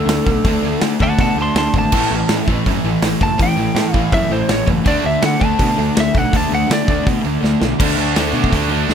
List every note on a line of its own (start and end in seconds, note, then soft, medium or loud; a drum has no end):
0.00 0.44 D3 medium
0.00 0.46 A3 medium
0.00 0.44 D4 medium
0.00 0.80 A4 loud
0.06 0.18 D2 medium
0.06 0.23 D3 medium
0.06 0.24 A3 medium
0.06 snare loud
0.06 open hi-hat medium
0.10 0.26 D3 medium
0.25 0.38 B1 medium
0.25 0.43 D3 medium
0.25 0.43 A3 medium
0.25 kick loud
0.44 0.56 D2 loud
0.44 0.62 D3 medium
0.44 0.62 A3 loud
0.44 0.98 D4 loud
0.44 kick loud
0.44 open hi-hat medium
0.63 0.74 D2 medium
0.63 0.79 D3 medium
0.63 0.80 A3 medium
0.80 0.98 D3 medium
0.80 0.93 D3 medium
0.80 0.99 A3 medium
0.80 snare loud
0.80 open hi-hat medium
0.99 1.12 D2 medium
0.99 1.17 D3 medium
0.99 1.17 A3 medium
0.99 1.91 D4 medium
0.99 1.19 F#5 medium
0.99 1.20 A5 medium
0.99 kick medium
1.18 1.30 B2 medium
1.18 1.35 D3 medium
1.18 1.36 A3 medium
1.18 1.37 F#5 medium
1.18 1.38 A5 loud
1.18 kick loud
1.18 open hi-hat medium
1.36 1.48 D2 medium
1.36 1.54 D3 medium
1.36 1.54 A3 medium
1.41 1.56 A5 medium
1.41 1.57 C6 medium
1.55 1.66 D2 medium
1.55 1.72 D3 medium
1.55 1.73 A3 medium
1.55 1.74 A5 medium
1.55 1.75 C6 medium
1.55 snare loud
1.55 open hi-hat medium
1.74 1.85 G#1 medium
1.74 1.91 D3 medium
1.74 1.91 A3 medium
1.74 kick loud
1.78 2.47 A5 loud
1.92 2.03 A1 loud
1.92 2.10 A2 loud
1.92 2.10 E3 loud
1.92 2.11 A3 loud
1.92 kick loud
1.92 crash loud
2.11 2.22 A1 loud
2.11 2.27 A2 medium
2.11 2.27 E3 medium
2.29 2.41 A2 medium
2.29 2.46 A2 medium
2.29 2.46 E3 medium
2.29 snare loud
2.29 open hi-hat medium
2.47 2.59 A1 loud
2.47 2.64 A2 medium
2.47 2.64 E3 medium
2.47 3.41 A3 medium
2.47 kick loud
2.66 2.78 F#2 loud
2.66 2.83 A2 medium
2.66 2.83 E3 loud
2.66 kick loud
2.66 open hi-hat medium
2.84 2.95 A1 medium
2.84 3.01 A2 medium
2.84 3.01 E3 medium
3.02 3.14 A1 medium
3.02 3.19 A2 medium
3.02 3.19 E3 medium
3.02 snare loud
3.02 open hi-hat medium
3.21 3.32 F#1 medium
3.21 3.38 A2 medium
3.21 3.38 E3 medium
3.21 3.40 A5 loud
3.21 kick loud
3.39 3.50 A1 loud
3.39 3.56 A2 medium
3.39 3.57 E3 medium
3.39 3.93 A3 loud
3.39 3.93 G5 loud
3.39 kick loud
3.39 open hi-hat medium
3.56 3.68 A1 medium
3.56 3.74 A2 medium
3.56 3.75 E3 medium
3.75 3.86 A2 medium
3.75 3.93 A2 medium
3.75 3.93 E3 medium
3.75 snare loud
3.75 open hi-hat medium
3.93 4.05 A1 medium
3.93 4.11 A2 medium
3.93 4.11 E3 medium
3.93 4.88 A3 medium
3.93 4.12 F5 loud
3.93 kick loud
4.12 4.23 F#2 loud
4.12 4.30 A2 medium
4.12 4.30 E3 medium
4.12 4.31 E5 loud
4.12 kick loud
4.12 open hi-hat medium
4.30 4.41 A1 medium
4.30 4.47 A2 medium
4.30 4.48 E3 medium
4.30 4.49 C5 loud
4.49 4.61 A1 medium
4.49 4.65 A2 medium
4.49 4.66 E3 medium
4.49 4.68 C#5 medium
4.49 snare loud
4.49 open hi-hat medium
4.67 4.79 F#1 medium
4.67 4.84 A2 medium
4.67 4.84 E3 medium
4.67 kick medium
4.84 4.97 D2 loud
4.84 5.01 D3 medium
4.84 5.02 A3 medium
4.84 5.03 D4 loud
4.84 5.05 D5 loud
4.84 kick loud
4.84 open hi-hat medium
5.02 5.16 D2 medium
5.02 5.20 D3 medium
5.02 5.20 A3 loud
5.06 5.23 E5 loud
5.22 5.39 D3 medium
5.22 5.34 D3 medium
5.22 5.39 A3 loud
5.22 snare loud
5.22 open hi-hat medium
5.26 5.45 F#5 medium
5.40 5.52 D2 medium
5.40 5.57 D3 medium
5.40 5.57 A3 medium
5.40 6.35 D4 medium
5.40 kick medium
5.45 5.96 A5 medium
5.59 5.70 B2 medium
5.59 5.75 D3 medium
5.59 5.75 A3 loud
5.59 kick loud
5.59 open hi-hat medium
5.77 5.89 D2 medium
5.77 5.94 D3 medium
5.77 5.94 A3 medium
5.95 6.08 D2 medium
5.95 6.12 D3 medium
5.95 6.12 A3 medium
5.95 snare loud
5.95 open hi-hat medium
6.00 6.18 E5 medium
6.14 6.25 B1 loud
6.14 6.30 D3 medium
6.14 6.30 A3 medium
6.14 6.36 F#5 loud
6.14 kick loud
6.31 6.44 D2 medium
6.31 6.48 D3 medium
6.31 6.48 A3 medium
6.31 kick loud
6.31 open hi-hat medium
6.36 6.87 D4 loud
6.36 6.52 A5 medium
6.49 6.63 D2 medium
6.49 6.66 D3 medium
6.49 6.66 A3 medium
6.55 6.71 F#5 loud
6.67 6.83 D3 medium
6.67 6.81 D3 medium
6.67 6.83 A3 medium
6.67 open hi-hat medium
6.71 7.07 D5 loud
6.71 snare loud
6.84 6.99 D2 loud
6.84 7.02 D3 medium
6.84 7.03 A3 medium
6.84 7.78 D4 medium
6.84 kick medium
6.89 7.05 D3 medium
6.89 7.77 D3 medium
6.89 7.79 A3 medium
6.89 7.05 A3 medium
7.03 7.18 B2 loud
7.03 7.20 D3 medium
7.03 7.20 A3 loud
7.03 kick loud
7.07 7.23 D3 medium
7.07 open hi-hat medium
7.21 7.39 D3 medium
7.21 7.39 A3 medium
7.26 7.37 D2 medium
7.41 7.54 D2 medium
7.41 7.58 D3 medium
7.41 7.58 A3 medium
7.41 snare medium
7.60 7.72 B1 loud
7.60 7.77 D3 medium
7.60 7.77 A3 medium
7.60 snare loud
7.79 7.95 D2 medium
7.79 7.97 D3 medium
7.79 7.97 A3 medium
7.79 7.98 D4 loud
7.79 kick loud
7.79 crash loud
7.98 8.13 D2 medium
7.98 8.15 D3 medium
7.98 8.15 A3 medium
7.98 8.15 D4 medium
8.16 8.32 D2 medium
8.16 8.32 D3 medium
8.16 8.33 A3 medium
8.16 8.34 D4 medium
8.16 snare loud
8.16 open hi-hat medium
8.33 8.49 B2 medium
8.33 8.50 D3 medium
8.33 8.51 A3 loud
8.33 8.51 D4 loud
8.44 kick medium
8.51 8.83 D2 loud
8.51 8.67 D3 medium
8.51 8.69 A3 loud
8.51 8.68 D4 loud
8.51 kick medium
8.51 open hi-hat medium
8.68 8.88 D3 loud
8.68 8.89 A3 loud
8.68 8.89 D4 loud
8.89 8.94 D2 medium
8.89 8.94 D3 medium
8.89 8.94 A3 medium
8.89 8.94 D4 loud
8.89 snare medium